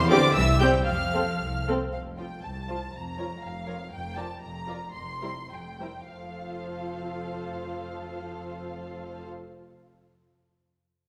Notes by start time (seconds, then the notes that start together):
Already playing: E2
0.09 D3 C4 G4 D5 D6
0.35 C2 E3 E5 E6
0.60 G3 C4 G4 G5 G6
0.86 F2 F3 F5 F6
1.14 C4 A4
1.40 C2
1.67 C4 A4
1.93 F1 F2 F5
2.18 F3 F4 C5 G5
2.43 C2 A5
2.68 F3 F4 C5
2.93 F1 F2 A#5
3.18 F3 F4 A#4 C#5
3.43 F1 F2 F5
3.67 F3 F4 A#4 C#5
3.92 F1 F2 G5
4.17 F3 F4 A#4 D5 A5
4.41 F1 F2 A#5
4.67 F3 F4 A#4 D5
4.93 F1 F2 C6
5.22 G3 E4 A#4 C5
5.51 F1 F2 G5
5.79 G3 E4 A#4 C5
6.10 F1 F2 F3 F4 A4 C5 F5